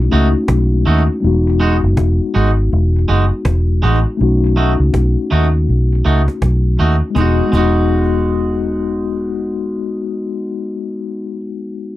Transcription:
0.00 1.25 G#3 medium
0.00 0.10 A3 medium
0.00 0.11 C#4 medium
0.00 0.12 D#4 medium
0.00 0.13 F#4 medium
0.10 0.33 C#2 medium
0.10 1.22 A3 medium
0.10 0.28 A3 medium
0.10 1.23 C#4 soft
0.10 0.28 D#4 medium
0.10 1.23 D#4 medium
0.10 0.28 F#4 loud
0.10 1.24 F#4 medium
0.10 cajon slap soft
0.48 0.84 B1 medium
0.48 cajon bass loud
0.48 cajon slap loud
0.71 cajon slap soft
0.86 1.08 D#2 medium
0.86 1.02 A3 medium
0.86 1.02 D#4 medium
0.86 1.02 F#4 medium
0.86 cajon slap soft
1.09 cajon slap soft
1.20 1.79 E1 loud
1.20 1.29 G3 medium
1.20 4.15 B3 medium
1.20 cajon slap soft
1.24 4.17 G#3 medium
1.24 4.16 D#4 medium
1.24 4.17 F#4 medium
1.46 cajon slap soft
1.60 1.76 G#3 medium
1.60 1.76 D#4 medium
1.60 1.76 F#4 medium
1.60 cajon slap soft
1.84 1.97 F#1 medium
1.97 2.18 E1 loud
1.97 cajon bass loud
1.97 cajon slap loud
2.20 cajon slap soft
2.34 2.70 G#1 medium
2.34 2.50 G#3 medium
2.34 2.50 D#4 medium
2.34 2.51 F#4 medium
2.34 cajon slap soft
2.72 3.07 E1 loud
2.72 cajon slap soft
2.94 cajon slap soft
3.08 3.30 F#1 medium
3.08 3.24 G#3 medium
3.08 3.24 D#4 medium
3.08 3.25 F#4 medium
3.08 cajon slap soft
3.45 3.80 E1 medium
3.45 cajon bass loud
3.45 cajon slap loud
3.67 cajon slap soft
3.82 4.04 A1 medium
3.82 3.98 G#3 medium
3.82 3.99 D#4 medium
3.82 3.99 F#4 loud
3.82 cajon slap soft
4.05 cajon slap soft
4.17 4.76 B1 loud
4.17 7.11 A3 medium
4.17 7.12 C#4 medium
4.17 7.13 D#4 medium
4.17 cajon slap soft
4.23 7.14 F#4 medium
4.42 cajon slap soft
4.56 4.72 A3 medium
4.56 4.73 D#4 medium
4.56 4.73 F#4 medium
4.56 cajon slap soft
4.80 4.93 C#2 medium
4.94 5.15 B1 medium
4.94 cajon bass loud
4.94 cajon slap loud
5.17 cajon slap soft
5.31 5.66 D#2 medium
5.31 5.47 A3 medium
5.31 5.47 D#4 medium
5.31 5.47 F#4 medium
5.31 cajon slap soft
5.68 6.03 B1 medium
5.68 cajon slap soft
5.90 cajon slap soft
6.05 6.27 C#2 medium
6.05 6.21 A3 medium
6.05 6.21 D#4 medium
6.05 6.21 F#4 medium
6.05 cajon slap soft
6.28 cajon slap medium
6.42 6.77 B1 medium
6.42 cajon bass loud
6.42 cajon slap loud
6.64 cajon slap soft
6.79 7.01 D#2 medium
6.79 6.95 A3 medium
6.79 6.95 D#4 medium
6.79 6.96 F#4 medium
6.79 cajon slap soft
7.02 cajon slap soft
7.10 7.37 G#3 medium
7.15 7.40 E1 medium
7.15 7.52 G#3 medium
7.15 7.39 B3 medium
7.15 7.54 D#4 medium
7.15 7.41 D#4 medium
7.15 cajon bass loud
7.15 cajon slap medium
7.20 7.55 F#4 medium
7.20 7.43 F#4 medium
7.47 11.31 G#3 medium
7.51 11.38 E1 medium
7.51 11.40 G#3 medium
7.51 11.35 B3 medium
7.51 11.43 D#4 medium
7.51 cajon bass loud
7.55 11.40 D#4 medium
7.55 11.45 F#4 loud
7.55 11.43 F#4 medium

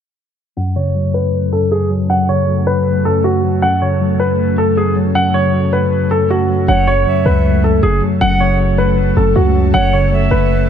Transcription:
0.57 1.51 F#2 medium
0.57 6.64 F#3 medium
0.57 6.64 A3 medium
0.57 6.64 C#4 medium
0.57 6.64 A4 medium
0.57 0.74 F#5 medium
0.76 1.72 C#3 medium
0.76 1.12 C#5 medium
0.95 1.89 F#3 medium
1.14 1.50 B4 medium
1.52 2.08 F#2 medium
1.52 1.69 A4 medium
1.71 1.88 G#4 medium
1.90 2.47 F#3 medium
2.09 3.04 F#2 medium
2.09 2.26 F#5 medium
2.29 3.24 C#3 medium
2.29 2.65 C#5 medium
2.48 3.42 F#3 medium
2.67 3.03 B4 medium
3.05 3.61 F#2 medium
3.05 3.22 A4 medium
3.24 3.60 F#4 medium
3.43 3.63 F#3 medium
3.62 4.56 F#2 medium
3.62 3.79 F#5 medium
3.82 4.77 C#3 medium
3.82 4.18 C#5 medium
4.01 4.95 F#3 medium
4.20 4.56 B4 medium
4.58 5.14 F#2 medium
4.58 4.75 A4 medium
4.77 4.94 G#4 medium
4.96 5.52 F#3 medium
5.15 6.10 F#2 medium
5.15 5.32 F#5 medium
5.34 6.30 C#3 medium
5.34 5.70 C#5 medium
5.53 6.48 F#3 medium
5.73 6.09 B4 medium
6.11 6.67 F#2 medium
6.11 6.28 A4 medium
6.30 6.66 F#4 medium
6.49 6.68 F#3 medium
6.68 7.05 F#1 loud
6.68 7.62 F#2 loud
6.68 10.69 F#3 medium
6.68 10.69 A3 medium
6.68 10.69 C#4 medium
6.68 10.69 A4 medium
6.68 7.04 C#5 loud
6.68 6.85 F#5 medium
6.87 7.83 C#3 medium
6.87 7.23 C#5 medium
7.06 8.00 F#3 medium
7.06 7.79 E5 medium
7.26 7.81 C#2 loud
7.26 7.62 B4 medium
7.64 8.20 F#2 medium
7.64 7.81 A4 medium
7.83 8.01 F#1 loud
7.83 8.00 G#4 medium
8.02 8.58 F#3 medium
8.21 9.13 F#1 loud
8.21 9.15 F#2 loud
8.21 8.38 F#5 loud
8.21 8.57 F#5 loud
8.40 9.36 C#3 medium
8.40 8.76 C#5 medium
8.59 9.54 F#3 medium
8.78 9.14 B4 medium
9.17 9.35 F#1 loud
9.17 9.73 F#2 medium
9.17 9.33 A4 medium
9.36 9.72 C#2 loud
9.36 9.72 F#4 medium
9.55 9.74 F#3 medium
9.74 10.29 F#1 loud
9.74 10.68 F#2 loud
9.74 10.10 C#5 loud
9.74 9.91 F#5 medium
9.93 10.69 C#3 medium
9.93 10.29 C#5 medium
10.12 10.69 F#3 medium
10.12 10.69 E5 loud
10.31 10.69 F#1 loud
10.31 10.67 B4 medium

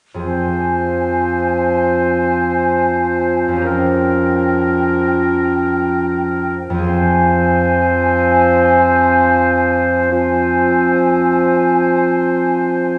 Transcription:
0.14 3.47 F2 soft
0.14 3.66 C4 soft
0.14 3.65 G#4 soft
0.20 3.61 F3 soft
0.20 3.66 C4 soft
0.20 3.67 C5 soft
0.25 3.62 C5 soft
0.25 3.62 G#5 soft
3.48 6.69 F2 soft
3.53 6.84 C#4 soft
3.53 6.86 G4 soft
3.61 6.60 C#4 soft
3.61 6.88 A#4 soft
3.65 6.56 F3 soft
3.65 6.57 A#4 soft
3.65 6.87 G5 soft
6.70 10.60 F2 soft
6.74 10.64 C4 soft
6.78 10.68 G#4 soft
6.83 10.07 C4 soft
6.83 10.73 C5 soft
6.87 10.07 F3 medium
6.87 10.07 C5 medium
6.87 9.89 G#5 medium
10.10 12.98 F3 medium
10.10 12.98 C4 soft
10.10 12.98 C5 soft
10.10 12.98 G#5 soft

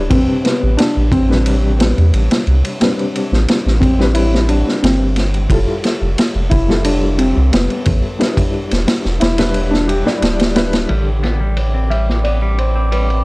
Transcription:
0.00 0.10 G3 medium
0.00 0.11 D4 medium
0.00 0.13 E4 medium
0.00 0.12 B4 loud
0.00 0.13 D5 loud
0.10 0.27 A1 loud
0.10 1.25 C3 medium
0.10 1.25 G3 medium
0.10 0.45 C4 loud
0.10 1.26 D4 medium
0.10 1.26 B4 medium
0.10 kick loud
0.10 ride medium
0.44 0.79 B3 medium
0.44 snare medium
0.44 ride medium
0.63 0.77 A1 medium
0.77 1.13 D4 loud
0.77 snare loud
0.77 ride medium
0.96 1.10 A1 medium
1.12 1.94 A1 medium
1.12 1.81 C4 loud
1.12 kick medium
1.12 ride medium
1.29 2.77 C3 medium
1.29 2.76 G3 medium
1.29 2.77 D4 medium
1.29 2.77 B4 medium
1.29 snare soft
1.46 ride medium
1.79 2.43 B3 medium
1.79 snare loud
1.79 ride medium
1.98 2.12 E2 medium
1.98 ride soft
2.13 2.29 A1 medium
2.13 ride medium
2.31 snare loud
2.31 ride medium
2.47 2.63 C2 loud
2.47 ride soft
2.65 ride medium
2.80 3.95 G3 medium
2.80 3.95 C4 medium
2.80 3.96 D4 medium
2.80 3.96 B4 medium
2.80 snare loud
2.80 ride medium
2.99 ride soft
3.15 ride medium
3.32 3.46 A1 medium
3.32 snare soft
3.48 snare loud
3.48 ride medium
3.66 3.80 A1 medium
3.66 snare soft
3.80 4.16 C4 medium
3.80 kick medium
3.80 ride medium
3.99 5.46 G3 medium
3.99 5.46 C4 medium
3.99 5.47 D4 medium
3.99 5.47 B4 medium
3.99 snare soft
4.14 4.50 E4 loud
4.14 ride medium
4.35 snare soft
4.48 4.84 D4 medium
4.48 ride medium
4.68 snare soft
4.83 5.47 G1 medium
4.83 5.31 C4 medium
4.83 snare loud
4.83 ride medium
5.16 snare soft
5.16 ride medium
5.34 ride soft
5.50 5.66 F1 medium
5.50 6.65 G3 medium
5.50 6.65 E4 medium
5.50 6.65 F4 medium
5.50 6.66 A4 medium
5.50 kick loud
5.50 ride medium
5.84 snare medium
5.84 ride medium
6.01 6.16 F1 medium
6.18 snare loud
6.18 ride medium
6.35 6.49 F1 medium
6.50 7.33 F1 medium
6.50 6.76 E4 loud
6.50 kick medium
6.50 ride medium
6.68 8.16 G3 medium
6.68 8.16 E4 medium
6.68 8.16 F4 medium
6.68 8.17 A4 medium
6.68 snare medium
6.77 6.84 E4 medium
6.84 7.20 D4 medium
6.84 ride medium
7.18 7.53 C4 medium
7.18 ride medium
7.37 7.51 C2 medium
7.52 7.68 F1 medium
7.52 8.00 B3 medium
7.52 snare loud
7.52 ride medium
7.70 ride soft
7.85 8.02 A1 loud
7.85 kick medium
7.85 ride medium
8.19 9.34 G3 medium
8.19 9.34 D4 medium
8.19 9.35 E4 medium
8.19 9.35 B4 medium
8.19 snare soft
8.19 ride medium
8.37 kick medium
8.37 ride medium
8.71 8.86 E1 medium
8.71 snare medium
8.71 ride medium
8.88 snare loud
8.88 ride loud
9.05 9.19 E1 medium
9.05 snare soft
9.20 10.03 E1 medium
9.20 9.73 E4 loud
9.20 snare loud
9.20 ride medium
9.38 10.02 G3 medium
9.38 10.03 D4 medium
9.38 10.03 E4 medium
9.38 10.03 B4 loud
9.38 snare loud
9.38 ride medium
9.54 ride medium
9.71 9.88 D4 medium
9.71 snare medium
9.88 10.51 G4 loud
9.88 ride medium
10.06 10.19 G3 medium
10.06 10.19 D4 medium
10.06 10.19 E4 medium
10.06 10.19 D5 loud
10.06 snare soft
10.22 10.86 D1 medium
10.22 snare loud
10.22 ride medium
10.40 snare loud
10.40 ride medium
10.55 10.86 G3 medium
10.55 10.86 D4 medium
10.55 10.86 E4 medium
10.55 10.86 B4 loud
10.55 snare loud
10.55 ride medium
10.73 snare loud
10.73 ride medium
10.89 13.24 A1 medium
10.89 13.24 D3 medium
10.89 11.06 G3 medium
10.89 13.24 C4 medium
10.89 13.24 G4 medium
10.89 13.24 A4 medium
10.89 13.24 G5 medium
10.89 13.24 B5 medium
10.89 13.24 D6 medium
10.89 ride medium
11.23 11.39 B3 medium
11.23 snare soft
11.23 ride medium
11.41 11.56 G3 medium
11.57 ride medium
11.74 11.90 C4 medium
11.90 12.07 G3 medium
11.90 12.25 E5 medium
11.90 ride medium
12.09 snare soft
12.24 12.40 B3 medium
12.24 12.31 D5 medium
12.24 ride medium
12.42 12.57 G3 medium
12.58 12.90 C5 medium
12.58 ride medium
12.75 12.91 C4 medium
12.92 13.09 G3 medium
12.92 13.24 B4 medium
12.92 ride medium
13.10 ride soft

